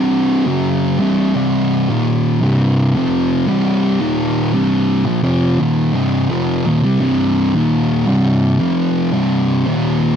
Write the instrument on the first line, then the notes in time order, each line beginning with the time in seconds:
distorted electric guitar
Already playing: C2 G2 C3
0.47 F#2 C#3 F#3
0.99 C2 G2 C3
1.35 C2 G2 C3
1.89 D#2 A#2 D#3
2.42 C2 G2 C3
2.95 F2 C3 F3
3.47 C2 G2 C3
4.00 D#2 A#2 D#3
4.53 C2 G2 C3
5.05 A#2 F3
5.23 F2 C3 F3
5.59 D#2 A#2 D#3
5.93 C2 G2 C3
6.30 F2 C3 F3
6.66 D#2 A#2
6.84 C3 G3
6.99 C2 G2 C3
7.55 D#2 A#2 D#3
8.06 C2 G2 C3
8.60 F2 C3 F3
9.13 C2 G2 C3
9.66 D#2 A#2 D#3